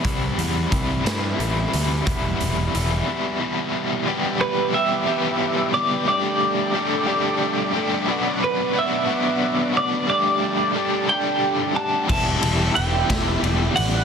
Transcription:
0.03 C2 C3 E3 G3 C4 E4, kick, closed hi-hat
0.37 E2, closed hi-hat
0.70 C2 C3 E3 G3 C4 E4, kick, closed hi-hat
1.04 G2 C3 E3 G3 C4 E4, snare, closed hi-hat
1.38 A1 C3 E3 G3 C4 E4, closed hi-hat
1.73 D2, closed hi-hat
2.05 E1 E2 B2 E3 G3 B3 E4, kick, closed hi-hat
2.41 E1, closed hi-hat
2.73 E1 E2 B2 E3 G3 B3 E4, closed hi-hat
3.06 E2 B2 E3 G3 B3 E4
3.39 E2 B2 E3 G3 B3 E4
4.06 E2 B2 E3 G3 B3 G4 B4 E5 G5 D6
4.41 B4
4.72 E3 G3 B3 G4 E5
5.06 E2 B2 E3 G3 B3 G4
5.73 E3 G3 B3 G4 D5
6.06 G3 A3 D4 G4 A4 D5 D6
6.73 G3 A3 D4 G4
7.07 G3 A3 D4 G4
7.73 A3 D4 G4
8.07 B2 F#3 B3 D4 F#4 B4 F#5
8.44 B4
8.73 F#3 B3 D4 F#4
8.79 E5
9.07 B2 F#3 B3 D4 F#4
9.73 B3 D4 F#4 D5
10.07 G3 A3 D4 G4 D5 A5
10.74 G3 A3 D4 G4
11.07 G3 A3 D4 G4 D5 G5
11.74 A3 D4 G4 F#5 A5
12.07 E1 E2 B2 E3 G3 E4 G4 E5 A5 B5, kick, crash
12.12 E5 D6
12.43 E1, ride
12.74 E1 E3 G3 E4 G4 E5 G5, ride
13.09 E1 E2 B2 E3 G3 E4 G4, kick, snare, ride
13.43 E1, ride
13.75 A1 E3 G3 E4 G4 D5 F#5, ride

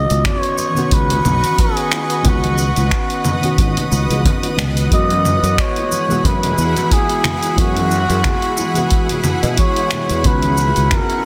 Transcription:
Already playing: D#3 B3 C#4 F#4 B4 D#5 F#5 C#6
0.10 C#2, open hi-hat, cabasa
0.24 C#5, finger snap, kick, open hi-hat, high bongo, low conga, cabasa
0.43 open hi-hat
0.58 high conga, cabasa
0.74 D#3 B3 C#4, high bongo, low conga, cabasa
0.79 F#4
0.91 C#2 B4, kick, open hi-hat, cabasa
1.10 open hi-hat, high bongo, low conga
1.25 B1, low conga, cabasa
1.44 open hi-hat, high conga, cabasa
1.58 G#4, kick, open hi-hat, high bongo, cabasa
1.77 open hi-hat
1.92 finger snap, high bongo, cabasa
2.10 open hi-hat, cabasa
2.23 C#2 D#3 B3 C#4 F#4 D#6, kick, open hi-hat, low conga, cabasa
2.29 F#4
2.43 open hi-hat, high bongo, high conga
2.58 cabasa
2.76 C#2, open hi-hat, high bongo, cabasa
2.91 finger snap, kick, open hi-hat, cabasa
3.10 open hi-hat
3.25 high bongo, high conga, low conga, cabasa
3.41 D#3 B3 C#4 F#4, open hi-hat, low conga, cabasa
3.58 G#1, kick, open hi-hat, high bongo, cabasa
3.77 open hi-hat, low conga
3.92 C#2, cabasa
4.10 C#2, open hi-hat, high bongo, high conga, cabasa
4.25 kick, open hi-hat, low conga, cabasa
4.43 open hi-hat, high bongo
4.57 C#2, finger snap, low conga, cabasa
4.77 open hi-hat, cabasa
4.90 F#2 E3 G#3 B3 E4 F#4 G#4 B5, kick, open hi-hat, high bongo, cabasa
4.94 D#5
5.10 open hi-hat, high conga
5.25 high bongo, low conga, cabasa
5.43 F#2, open hi-hat, cabasa
5.58 C#5, finger snap, kick, open hi-hat, cabasa
5.76 open hi-hat, high bongo
5.92 high conga, cabasa
6.08 E3 G#3 B3 F#4, high bongo, low conga, cabasa
6.24 F#2 B4, kick, open hi-hat, low conga, cabasa
6.43 open hi-hat, low conga
6.58 E2, high bongo, cabasa
6.76 open hi-hat, high conga, cabasa
6.91 G#4, kick, open hi-hat, high bongo, cabasa
7.09 open hi-hat
7.24 finger snap, low conga, cabasa
7.43 open hi-hat, high bongo, cabasa
7.56 F#2 E3 G#3 B3 F#4, kick, open hi-hat, cabasa
7.60 F#4
7.76 open hi-hat, high bongo, high conga
7.91 cabasa
8.09 F#2, open hi-hat, cabasa
8.24 finger snap, kick, open hi-hat, high bongo, low conga, cabasa
8.42 open hi-hat
8.57 high bongo, high conga, cabasa
8.74 E3 G#3 B3, open hi-hat, low conga, cabasa
8.78 F#4
8.90 kick, open hi-hat, cabasa
9.09 open hi-hat, high bongo, low conga
9.24 low conga, cabasa
9.43 B2, open hi-hat, high bongo, high conga, cabasa
9.57 C#5, kick, open hi-hat, cabasa
9.76 open hi-hat
9.91 finger snap, high bongo, low conga, cabasa
10.10 E2, open hi-hat, cabasa
10.22 C#2 D#3 B3 C#4 D#5 C#6, kick, open hi-hat, cabasa
10.26 F#4 B4
10.42 open hi-hat, high conga
10.57 high bongo, cabasa
10.76 C#2, open hi-hat, cabasa
10.91 A#4, finger snap, kick, open hi-hat, high bongo, low conga, cabasa
11.10 open hi-hat

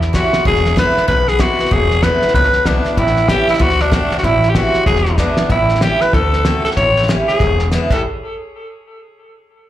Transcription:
Already playing: E2
0.02 snare
0.13 E3 G3 C#4 E4 F#4, kick, snare, hi-hat pedal
0.33 C#4 E4, muted upright bass stroke, snare
0.45 E1 E2 G#4, kick, snare
0.55 snare
0.66 snare
0.76 D3 G#3 B3 E4 B4, kick, snare, hi-hat pedal
0.96 muted upright bass stroke, snare
1.08 B1 B2 B4, kick, snare
1.28 G#4, snare
1.39 D3 G#3 B3 E4 F#4, kick, snare, hi-hat pedal
1.58 B3 E4, muted upright bass stroke, snare
1.65 snare
1.71 E1 E2 G#4, kick, snare
1.91 snare
2.03 D3 G#3 B3 E4 B4, kick, snare, hi-hat pedal
2.22 B3 E4, muted upright bass stroke, snare
2.28 snare
2.34 C#2 B2 B4, kick, snare
2.44 snare
2.53 snare
2.66 B1 D3 G#3 B3 D4 E4, kick, snare, hi-hat pedal
2.85 B3 E4, snare
2.97 A1 A2 E4, kick, snare
3.07 snare
3.17 snare
3.29 E3 G3 C#4 E4 G4, kick, snare, hi-hat pedal
3.47 C#4 E4, muted upright bass stroke, snare
3.54 snare
3.59 D2 D3 F#4, kick, snare
3.70 snare
3.80 D4, snare
3.91 D3 A3 C4 F#4, kick, snare, hi-hat pedal
4.10 C4 F#4, muted upright bass stroke, snare
4.18 F#4, snare
4.23 A1 A2 E4, kick, snare
4.43 snare
4.50 G4
4.55 E3 G3 C#4 E4 F#4, kick, snare, hi-hat pedal
4.73 C#4 E4, muted upright bass stroke, snare
4.86 E1 E2 G#4, kick, snare
4.96 snare
5.06 snare
5.18 D3 G#3 B3 D4 E4, kick, snare, hi-hat pedal
5.37 B3 E4, muted upright bass stroke, snare
5.49 A1 A2 E4, kick, snare
5.69 snare
5.75 snare
5.81 E3 G3 C#4 E4 G4, snare, hi-hat pedal
6.01 C#4 E4 B4, muted upright bass stroke, snare
6.13 D2 D3 A4, kick, snare
6.33 snare
6.45 D3 A3 C4 F#4, snare, hi-hat pedal
6.64 C4 F#4 A4, muted upright bass stroke, snare
6.71 snare
6.77 A1 A2 C#5, kick, snare
6.96 snare
7.03 snare
7.08 E3 G3 C#4 E4, snare, hi-hat pedal
7.27 G#4, muted upright bass stroke, snare
7.40 E1, kick, snare
7.59 snare
7.72 D3 G#3 B3 E4, snare, hi-hat pedal
7.90 A1 A2 E3 G3 C#4 E4 A4, kick, crash

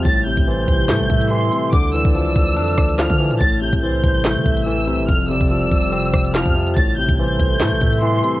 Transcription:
Already playing: C3 G3
0.05 A1 A2 E4 A4 A6, kick, closed hi-hat
0.26 C3 G6
0.37 A1, kick, closed hi-hat
0.47 E3 C5 G6
0.68 A1, kick, closed hi-hat
0.89 A2 A3, snare, clap
1.00 A1
1.10 A2 E5, kick, closed hi-hat
1.21 closed hi-hat
1.31 E3 C6
1.52 C3, closed hi-hat
1.73 D2 D3 A3 E4 D6, kick, closed hi-hat
1.94 E3 D5 E6
2.05 D2, kick, closed hi-hat
2.15 F3 E6
2.26 C2
2.36 D2, kick, closed hi-hat
2.57 F2 D4, closed hi-hat
2.62 closed hi-hat
2.68 closed hi-hat
2.73 closed hi-hat
2.78 D2, kick, cross-stick
2.89 closed hi-hat
2.98 F3 F6, snare, clap
3.10 D3, kick
3.20 E3, open hi-hat
3.31 A2, closed hi-hat
3.41 A1 A2 C3 G3 A6, kick, closed hi-hat
3.62 C3 G6
3.73 C2, kick, closed hi-hat
3.83 E3 C5 G6
4.04 A1, kick, closed hi-hat
4.25 A3, snare, clap
4.36 E3
4.46 A1 E5, kick, closed hi-hat
4.57 closed hi-hat
4.66 E3 E6
4.87 C2 C3, closed hi-hat
4.99 A1
5.08 F1 F2 F4 G4 F6, kick, closed hi-hat
5.30 G1 C3 D5 E6
5.41 F1, kick, closed hi-hat
5.50 F3 E6
5.62 E1
5.72 F1, kick, closed hi-hat
5.92 C4, closed hi-hat
6.13 F1, kick, cross-stick
6.25 closed hi-hat
6.34 F3 F6, snare, clap
6.46 F2, kick
6.55 C3
6.67 closed hi-hat
6.76 A1 A2 C3 E4 A4 A6, kick, closed hi-hat
6.97 C3 G6
7.09 A1, kick, closed hi-hat
7.19 E3 C5 G6
7.39 A1, kick, closed hi-hat
7.60 A2 A3, snare, clap
7.72 A1
7.81 A2 E5, kick, closed hi-hat
7.92 closed hi-hat
8.02 E3 C6
8.23 C3, closed hi-hat

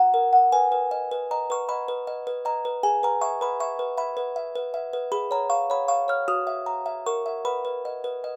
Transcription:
Already playing: F#4 F#5 C#6
0.14 A#4
0.33 F#5
0.52 B4 G#5
0.72 B4
0.91 D#5
1.11 B4
1.31 D#5 A#5
1.50 B4 C#6
1.69 D#5 B5
1.88 B4
2.07 D#5
2.27 B4
2.45 D#5 A#5
2.65 B4
2.83 G#4 G#5
3.03 B4 A#5
3.21 E5 C#6
3.41 B4 B5
3.60 E5 C#6
3.79 B4
3.97 E5 B5
4.17 B4
4.36 E5
4.55 B4
4.74 E5
4.93 B4
5.12 G#4 B5
5.31 C#5 A#5
5.50 F5 C#6
5.70 C#5 B5
5.88 F5 C#6
6.08 C#5 F6
6.28 F#4 D#6
6.47 E5
6.66 A#5
6.86 E5
7.06 A#4 C#6
7.26 E5
7.45 B4 B5
7.65 B4
7.85 D#5
8.04 B4
8.24 D#5

